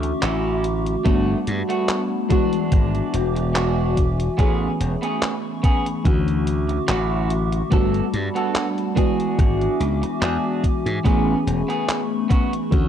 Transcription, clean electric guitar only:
0, 0, Header, 1, 3, 480
1, 0, Start_track
1, 0, Key_signature, 3, "major"
1, 0, Tempo, 833333
1, 608, Time_signature, 4, 2, 24, 8
1, 7422, End_track
2, 0, Start_track
2, 0, Title_t, "Clean electric guitar"
2, 0, Program_c, 0, 27
2, 126, Note_on_c, 0, 61, 84
2, 131, Note_on_c, 0, 64, 77
2, 134, Note_on_c, 0, 66, 92
2, 367, Note_off_c, 0, 61, 0
2, 369, Note_off_c, 0, 64, 0
2, 371, Note_off_c, 0, 66, 0
2, 603, Note_on_c, 0, 57, 106
2, 608, Note_on_c, 0, 59, 94
2, 612, Note_on_c, 0, 66, 115
2, 790, Note_off_c, 0, 57, 0
2, 792, Note_off_c, 0, 59, 0
2, 795, Note_off_c, 0, 66, 0
2, 972, Note_on_c, 0, 57, 85
2, 976, Note_on_c, 0, 59, 78
2, 981, Note_on_c, 0, 66, 96
2, 1150, Note_off_c, 0, 57, 0
2, 1152, Note_off_c, 0, 59, 0
2, 1155, Note_off_c, 0, 66, 0
2, 1324, Note_on_c, 0, 56, 88
2, 1328, Note_on_c, 0, 62, 82
2, 1333, Note_on_c, 0, 66, 97
2, 1806, Note_off_c, 0, 56, 0
2, 1808, Note_off_c, 0, 62, 0
2, 1811, Note_off_c, 0, 66, 0
2, 2042, Note_on_c, 0, 56, 85
2, 2047, Note_on_c, 0, 62, 77
2, 2051, Note_on_c, 0, 66, 95
2, 2285, Note_off_c, 0, 56, 0
2, 2288, Note_off_c, 0, 62, 0
2, 2290, Note_off_c, 0, 66, 0
2, 2522, Note_on_c, 0, 59, 106
2, 2527, Note_on_c, 0, 61, 96
2, 2531, Note_on_c, 0, 68, 114
2, 2710, Note_off_c, 0, 59, 0
2, 2712, Note_off_c, 0, 61, 0
2, 2714, Note_off_c, 0, 68, 0
2, 2892, Note_on_c, 0, 59, 85
2, 2897, Note_on_c, 0, 61, 78
2, 2902, Note_on_c, 0, 68, 96
2, 3070, Note_off_c, 0, 59, 0
2, 3073, Note_off_c, 0, 61, 0
2, 3075, Note_off_c, 0, 68, 0
2, 3244, Note_on_c, 0, 59, 84
2, 3248, Note_on_c, 0, 61, 78
2, 3253, Note_on_c, 0, 68, 93
2, 3375, Note_off_c, 0, 59, 0
2, 3377, Note_off_c, 0, 61, 0
2, 3379, Note_off_c, 0, 68, 0
2, 3963, Note_on_c, 0, 61, 84
2, 3968, Note_on_c, 0, 64, 79
2, 3972, Note_on_c, 0, 66, 93
2, 4206, Note_off_c, 0, 61, 0
2, 4208, Note_off_c, 0, 64, 0
2, 4210, Note_off_c, 0, 66, 0
2, 4443, Note_on_c, 0, 59, 105
2, 4447, Note_on_c, 0, 66, 97
2, 4452, Note_on_c, 0, 69, 119
2, 4630, Note_off_c, 0, 59, 0
2, 4632, Note_off_c, 0, 66, 0
2, 4635, Note_off_c, 0, 69, 0
2, 4811, Note_on_c, 0, 59, 85
2, 4815, Note_on_c, 0, 66, 81
2, 4820, Note_on_c, 0, 69, 93
2, 4989, Note_off_c, 0, 59, 0
2, 4992, Note_off_c, 0, 66, 0
2, 4994, Note_off_c, 0, 69, 0
2, 5162, Note_on_c, 0, 62, 89
2, 5166, Note_on_c, 0, 66, 82
2, 5171, Note_on_c, 0, 68, 102
2, 5645, Note_off_c, 0, 62, 0
2, 5647, Note_off_c, 0, 66, 0
2, 5650, Note_off_c, 0, 68, 0
2, 5884, Note_on_c, 0, 62, 84
2, 5888, Note_on_c, 0, 66, 76
2, 5892, Note_on_c, 0, 68, 91
2, 6126, Note_off_c, 0, 62, 0
2, 6128, Note_off_c, 0, 66, 0
2, 6130, Note_off_c, 0, 68, 0
2, 6362, Note_on_c, 0, 59, 107
2, 6366, Note_on_c, 0, 61, 98
2, 6372, Note_on_c, 0, 68, 119
2, 6550, Note_off_c, 0, 59, 0
2, 6552, Note_off_c, 0, 61, 0
2, 6554, Note_off_c, 0, 68, 0
2, 6730, Note_on_c, 0, 59, 87
2, 6735, Note_on_c, 0, 61, 78
2, 6739, Note_on_c, 0, 68, 94
2, 6909, Note_off_c, 0, 59, 0
2, 6911, Note_off_c, 0, 61, 0
2, 6914, Note_off_c, 0, 68, 0
2, 7081, Note_on_c, 0, 59, 86
2, 7086, Note_on_c, 0, 61, 77
2, 7091, Note_on_c, 0, 66, 95
2, 7213, Note_off_c, 0, 59, 0
2, 7216, Note_off_c, 0, 61, 0
2, 7219, Note_off_c, 0, 66, 0
2, 7422, End_track
3, 0, Start_track
3, 0, Title_t, "Muted clean electric guitar strokes"
3, 14, Note_on_c, 9, 29, 32
3, 72, Note_off_c, 9, 29, 0
3, 1933, Note_on_c, 9, 29, 32
3, 1991, Note_off_c, 9, 29, 0
3, 3482, Note_on_c, 9, 29, 32
3, 3540, Note_off_c, 9, 29, 0
3, 3853, Note_on_c, 9, 29, 32
3, 3911, Note_off_c, 9, 29, 0
3, 5771, Note_on_c, 9, 29, 32
3, 5829, Note_off_c, 9, 29, 0
3, 7322, Note_on_c, 9, 29, 31
3, 7380, Note_off_c, 9, 29, 0
3, 7422, End_track
0, 0, End_of_file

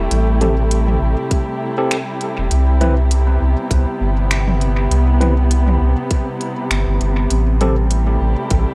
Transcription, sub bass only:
0, 0, Header, 1, 2, 480
1, 0, Start_track
1, 0, Tempo, 600000
1, 87, Time_signature, 4, 2, 24, 8
1, 6992, End_track
2, 0, Start_track
2, 0, Title_t, "Sub bass"
2, 0, Program_c, 0, 38
2, 87, Note_on_c, 0, 33, 101
2, 787, Note_off_c, 0, 33, 0
2, 809, Note_on_c, 0, 33, 81
2, 926, Note_off_c, 0, 33, 0
2, 1903, Note_on_c, 0, 28, 90
2, 1995, Note_off_c, 0, 28, 0
2, 2007, Note_on_c, 0, 36, 101
2, 2707, Note_off_c, 0, 36, 0
2, 2729, Note_on_c, 0, 36, 80
2, 2846, Note_off_c, 0, 36, 0
2, 2966, Note_on_c, 0, 36, 88
2, 3085, Note_off_c, 0, 36, 0
2, 3204, Note_on_c, 0, 31, 98
2, 3905, Note_off_c, 0, 31, 0
2, 3922, Note_on_c, 0, 36, 100
2, 4624, Note_off_c, 0, 36, 0
2, 4643, Note_on_c, 0, 36, 84
2, 4763, Note_off_c, 0, 36, 0
2, 5363, Note_on_c, 0, 31, 93
2, 5483, Note_off_c, 0, 31, 0
2, 5497, Note_on_c, 0, 31, 96
2, 5592, Note_off_c, 0, 31, 0
2, 5606, Note_on_c, 0, 31, 78
2, 5821, Note_off_c, 0, 31, 0
2, 5844, Note_on_c, 0, 33, 99
2, 6545, Note_off_c, 0, 33, 0
2, 6565, Note_on_c, 0, 33, 81
2, 6684, Note_off_c, 0, 33, 0
2, 6807, Note_on_c, 0, 33, 90
2, 6925, Note_off_c, 0, 33, 0
2, 6992, End_track
0, 0, End_of_file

